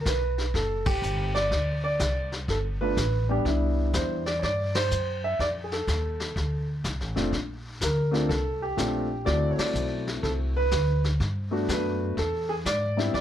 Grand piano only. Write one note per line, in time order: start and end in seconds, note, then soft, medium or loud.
0.01 0.06 A#4 medium
0.07 0.52 B4 medium
0.55 0.85 A4 medium
0.86 1.31 G4 medium
1.35 1.82 D5 medium
1.84 2.29 D5 medium
2.50 2.57 A4 medium
2.81 2.95 A3 medium
2.81 2.96 B3 soft
2.81 2.96 D4 soft
2.81 2.96 F4 medium
2.81 3.26 B4 medium
3.29 3.44 G3 medium
3.29 3.44 B3 medium
3.29 3.44 D4 medium
3.29 3.44 G4 medium
3.46 4.20 G3 medium
3.46 4.20 B3 medium
3.46 4.20 D4 medium
3.46 4.21 E4 medium
3.94 4.24 C5 medium
4.26 4.39 D5 medium
4.39 4.43 C#5 medium
4.44 4.76 D5 medium
4.75 5.20 C5 loud
5.24 5.39 E5 medium
5.41 5.46 D5 medium
5.64 5.72 G#4 medium
5.73 6.65 A4 medium
7.16 7.31 A3 medium
7.16 7.31 C4 medium
7.16 7.31 D4 medium
7.16 7.31 F4 medium
7.83 8.32 A#4 medium
8.11 8.27 A3 medium
8.11 8.27 C4 medium
8.11 8.27 D4 medium
8.11 8.28 F4 medium
8.29 8.62 A4 medium
8.62 9.23 G4 medium
8.77 9.06 A3 medium
8.77 9.06 C4 medium
8.77 9.07 D4 medium
8.77 9.07 F4 medium
9.25 10.61 A3 medium
9.25 10.61 C4 medium
9.25 10.62 E4 medium
9.25 10.62 F#4 medium
9.25 9.48 D5 loud
9.51 9.59 C#5 medium
9.59 10.04 D5 medium
10.23 10.30 A4 medium
10.57 11.01 B4 loud
11.51 12.13 A3 medium
11.51 12.13 B3 medium
11.51 12.14 D4 medium
11.51 12.14 F#4 medium
11.70 12.14 B4 medium
12.19 12.51 A4 medium
12.49 12.54 G#4 medium
12.66 13.13 D5 medium
12.97 13.12 G3 medium
12.97 13.12 B3 medium
12.97 13.12 C4 medium
12.97 13.13 E4 medium
13.14 13.21 D5 loud